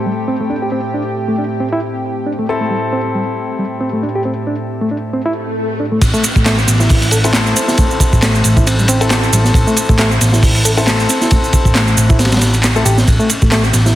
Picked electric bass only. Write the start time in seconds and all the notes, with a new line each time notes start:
6.02 A1
6.36 A1
6.68 A1
8.13 A1
8.44 A1
9.33 A1
9.54 A1
9.89 A1
10.21 A1
11.65 A1
11.97 A1
12.85 A1
13.08 A1
13.42 A1
13.74 A1